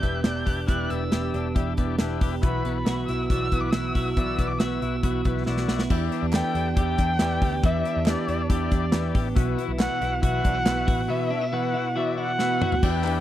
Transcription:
Already playing: E3 B3 D4 G4 G6
0.02 E1 B3 E4 G4 E5, kick, closed hi-hat
0.24 E1 E3 B3 D4 E4 G4 D5 G6, snare, closed hi-hat
0.46 E1 B3 D4 G4, kick, open hi-hat
0.67 E1 E3 B3 D4 E4 G4 D5 F#6, kick, closed hi-hat
0.90 E1 B3 E6, closed hi-hat
1.11 E1 E3 B3 D4 E4 G4 D5, snare, closed hi-hat
1.33 E1 B3 D4 G4, closed hi-hat
1.54 E1 E3 B3 D4 E4 G4 E5, kick, closed hi-hat
1.77 E1 B3 E4 G4 D5, kick, closed hi-hat
1.99 E1 E3 B3 D4 E4 G4 B4, snare, closed hi-hat
2.20 E1 B3 D4 G4, kick, open hi-hat
2.42 B1 B2 E3 B3 E4 F#4 B4 B5, kick, closed hi-hat
2.65 B1 B3, closed hi-hat
2.74 B5
2.85 B1 E3 B3 E4 F#4 B4, snare, closed hi-hat
3.07 B1 B3 E4 F#4 E6, closed hi-hat
3.28 B1 E3 B3 E4 F#4 D5 E6, kick, closed hi-hat
3.52 B1 B3 E4 F#4 B4, kick, closed hi-hat
3.61 D6
3.71 B1 E3 B3 E4 F#4 E6, snare, closed hi-hat
3.75 F#4 B4
3.95 B1 B3 E4 F#4, kick, open hi-hat
4.14 B1 B2 E3 B3 E4 E6, kick, closed hi-hat
4.18 F#4 D5
4.38 B1 B3, kick, closed hi-hat
4.47 D6
4.59 B1 E3 B3 E4 F#4 B4 E6, snare, closed hi-hat
4.81 B1 B3 E4 F#4, closed hi-hat
5.02 B1 E3 B3 E4 F#4 B4, kick, closed hi-hat
5.25 B1 B3 E4 F#4 B4, kick, closed hi-hat
5.46 B1 E3 B3 E4 F#4 D5, snare
5.57 snare
5.68 B1 B3 E4 F#4, snare
5.79 snare
5.90 E2 E3 B3 D4 E4 G4 D5, kick, crash
6.11 B3 D4 G4, closed hi-hat
6.23 E2
6.32 E3 B3 D4 E4 G4 A4 G5, snare, clap, closed hi-hat
6.55 E2 B3 D4 G4, closed hi-hat
6.76 E2 E3 B3 D4 E4 G4 D5 G5, kick, closed hi-hat
6.98 E2 D4, kick, closed hi-hat
7.19 E2 E3 B3 D4 E4 G4 D5, snare, clap, closed hi-hat
7.41 D2 B3 D4 G4, kick, open hi-hat
7.63 E2 E3 B3 D4 E4 G4 D5 E5, kick, closed hi-hat
7.84 B3 D4 G4, closed hi-hat
7.97 E2
8.06 E3 B3 D4 E4 G4 D5, snare, clap, closed hi-hat
8.28 E2 B3 D4 G4, closed hi-hat
8.49 E2 E3 B3 D4 E4 G4 D5, kick, closed hi-hat
8.71 E2 D4, kick, closed hi-hat
8.91 E2 E3 B3 D4 E4 G4 D5, snare, clap, closed hi-hat
9.14 A1 B3 D4 G4, kick, open hi-hat
9.35 B1 B2 E3 B3 E4 F#4 B4, kick, closed hi-hat
9.57 B3 E4 F#4, closed hi-hat
9.69 B1
9.78 B2 E3 B3 E4 F#4 B4 F#5, snare, clap, closed hi-hat
10.01 B1 B3 E4 F#4, closed hi-hat
10.22 B1 E3 B3 E4 F#4 B4 F#5, kick, closed hi-hat
10.44 B1 D4, kick, closed hi-hat
10.54 E4
10.65 B1 B2 E3 B3 E4 F#4 B4, snare, clap, closed hi-hat
10.87 A1 B3 E4 F#4, kick, open hi-hat
11.08 B2 E3 B3 E4 F#4 B4 E5
11.30 B3 D4 E4 F#4
11.41 E4
11.52 B2 E3 B3 E4 F#4 B4 F#5
11.74 B3 E4 F#4
11.96 E3 B3 E4 F#4 D5 E5
12.18 E4 F#5
12.39 B2 E3 B3 E4 F#4 B4, snare
12.61 B3 E4 F#4, mid tom
12.72 floor tom
12.83 E2 E3 B3 D4 E4 G4 B4 G5, kick, crash
13.04 B3 D4 G4, clap, hi-hat pedal, open hi-hat

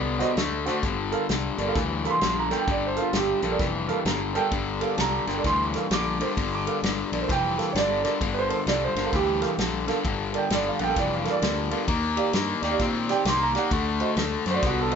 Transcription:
Already playing: C2 D3 B3 D4
0.19 F#4 C5 D#5, snare, closed hi-hat
0.37 D2 D3 A3, snare, closed hi-hat
0.66 D3 A3 F#4 C5 F#5, snare, closed hi-hat
0.83 G1 G2 D3, kick, closed hi-hat
1.12 A4 A#4 F5, closed hi-hat
1.29 C2 G2 D3, snare, closed hi-hat
1.58 G1 G2 D3 A#4 D5, closed hi-hat
1.67 A4 A#4 F5
1.75 D2 G2 E3, kick, snare, closed hi-hat
2.05 A4 A#4 F5 B5, closed hi-hat
2.10 C6
2.21 A#1 G2 D3, snare, closed hi-hat
2.39 A#5
2.50 G2 D3 A4 A#4 G5, snare, closed hi-hat
2.57 G5
2.67 G1 G2 D3 D5, kick, closed hi-hat
2.87 C5
2.96 A4 A#4 F5, closed hi-hat
3.01 F4
3.13 G1 G2 D3 G4, snare, closed hi-hat
3.42 A#1 G2 D3 A#4 F5, closed hi-hat
3.51 A4 A#4 D5
3.59 F1 G2 E3, kick, snare, closed hi-hat
3.88 A4 A#4 F5, closed hi-hat
4.05 G1 G2 D3 A#5, snare, closed hi-hat
4.34 G2 D3 A4 A#4 G5, closed hi-hat
4.52 G1 G2 D3, kick, ride
4.81 A4 A#4 F5, ride
4.96 C2 G2 D3 A5, snare, ride
5.01 A#5
5.27 G1 G2 D3 A#4 G5, snare, ride
5.37 A4 A#4 D5
5.44 D2 G2 E3 C6, kick, snare, ride
5.74 A4 A#4 F5, snare, ride
5.89 A#1 G2 D3 C#6, snare, ride
5.93 D6
6.20 G2 D3 A4 A#4 C5, ride
6.37 G1 G2 D3, kick, ride
6.50 C#6
6.54 D6
6.67 A4 A#4 F5, ride
6.83 G1 G2 D3, snare, ride
7.12 A#1 G2 D3 A#4 D5, ride
7.20 A4 A#4 C5
7.28 F1 G2 E3 G5, kick, snare, ride
7.58 A4 A#4 F5, snare, ride
7.73 G1 G2 D3 C#5, snare, ride
7.78 D5
8.03 G2 D3 A4 A#4 D5, snare, ride
8.21 G1 G2 D3, kick, ride
8.34 B4
8.39 C5
8.49 A4 A#4 C5, ride
8.66 C2 G2 D3 D5, snare, ride
8.85 C5
8.95 G1 G2 D3 A#4 F5, snare, ride
9.04 A4 A#4 F5
9.13 D2 G2 E3 G4, kick, snare, ride
9.40 A4 A#4 F5, snare, ride
9.58 A#1 G2 D3, snare, ride
9.87 G2 D3 A4 A#4 F5, snare, ride
10.05 G1 G2 D3, kick, ride
10.33 A4 A#4 D5, ride
10.38 G5
10.50 G1 G2 D3 D5, snare, ride
10.68 F5
10.79 A#1 G2 D3 A#4 F5 F#5, ride
10.83 G5
10.87 A4 A#4 F5
10.96 F1 G2 E3 D5, kick, snare, ride
11.15 F5
11.25 A4 A#4 F5, snare, ride
11.29 A#4 D5
11.42 D2 G2 D3, snare, ride
11.70 G2 D3 A4 A#4 F5, ride
11.88 D#2 D#3 A#3, kick, ride
12.16 G4 D5 F5, ride
12.33 G2 D#3 A#3, snare, ride
12.62 D#2 D#3 A#3 D5 G5, snare, ride
12.70 G4 D5 F5
12.79 A#2 D#3 C4, kick, snare, ride
13.09 G4 D5 G5, snare, ride
13.25 C2 D#3 A#3 C6, snare, ride
13.43 A#5
13.54 D#3 A#3 G4 D5 F5, snare, ride
13.58 F#5
13.71 D2 D3 A3, kick, ride
14.00 F#4 C5 D#5, ride
14.16 D2 D3 A3, snare, ride
14.46 F#2 D3 A3 C5 F#5, snare, ride
14.51 F#4 C5
14.55 D5
14.63 C2 D3 B3 F#4, kick, snare, ride
14.81 A4
14.91 F#4 C5, ride

